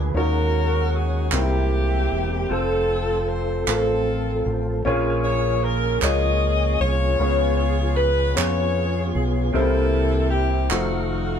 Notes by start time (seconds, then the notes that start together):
Already playing: D2 A#2 D3 G#3 A#3 D4 F4 G#4 B4
0.14 D#2 D#3 A#3 C#4 D#4 F#4 A#4 C#5
0.94 G#4
1.32 C2 C3 E3 A#3 C4 D#4 E4 G4 C5, clap
1.39 E4
2.11 E1
2.49 F1 F3 A3 C4 F4 A4
3.28 C5
3.67 A1 C4 F4 A4 A#4, clap
3.77 C5
4.46 A1
4.85 A#1 A#2 F3 A#3 C#4 F4 G#4 C#5
5.24 C#5
5.63 A#4
6.01 C#2 A#3 C#4 F4 G#4 C#5 D#5, clap
6.80 C2 F4 G#4 C#5
7.19 C#2 C#3 B3 C#4 F4 G#4 C#5
7.57 C#5
7.97 B4
8.35 F2 B3 C#4 F4 G#4 C#5, clap
9.15 B1
9.53 C2 C3 E3 A#3 C4 D#4 E4 G4 A4 C5
9.61 E4
10.30 G4
10.68 F1 D#3 F3 A3 D#4 F#4 F5, clap
10.73 C5